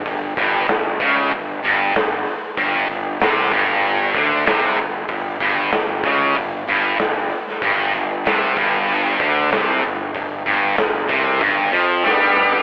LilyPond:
<<
  \new Staff \with { instrumentName = "Lead electric guitar" } { \time 4/4 \key g \mixolydian \tempo 4 = 95 r1 | r1 | r1 | r1 |
r2. g'4 | }
  \new Staff \with { instrumentName = "Lead electric guitar" } { \time 4/4 \key g \mixolydian r1 | r1 | r1 | r1 |
r2. b4 | }
  \new Staff \with { instrumentName = "Distorted electric guitar" } { \clef bass \time 4/4 \key g \mixolydian g,8 g,8 g,8 cis8 g,8 g,8 g,8 r8 | g,8 g,8 c8 g,4 d8 c8 g,8 | g,8 g,8 g,8 cis8 g,8 g,8 g,8 r8 | g,8 g,8 c8 g,4 d8 c8 g,8 |
g,8 g,8 g,8 c8 g,8 f8 g4 | }
  \new Staff \with { instrumentName = "Fingered electric bass" } { \clef bass \time 4/4 \key g \mixolydian g,,8 g,,8 g,,8 cis,8 g,,8 g,,8 g,,8 r8 | g,,8 g,,8 c,8 g,,4 d,8 c,8 g,,8 | g,,8 g,,8 g,,8 cis,8 g,,8 g,,8 g,,8 r8 | g,,8 g,,8 c,8 g,,4 d,8 c,8 g,,8 |
g,,8 g,,8 g,,8 c,8 g,,8 f,8 g,4 | }
  \new DrumStaff \with { instrumentName = "Drums" } \drummode { \time 4/4 <hho bd>8 <hho bd>8 <hho sn>8 <hho bd>8 <hho bd>8 hho8 <hho sn>8 hho8 | <hho bd>8 hho8 <hho sn>8 <hho bd>8 hho8 <hho bd>8 <hho sn>8 hho8 | <hho bd>8 <hho bd>8 <hho sn>8 <hho bd>8 <hho bd>8 hho8 <hho sn>8 hho16 sn16 | <hho bd>8 hho8 <hho sn>8 <hho bd>8 hho8 <hho bd>8 <hho sn>8 hho8 |
<hho bd>8 <hho bd>8 <hho sn>8 <hho bd>8 <hho bd>8 hho8 sn8 toml16 tomfh16 | }
>>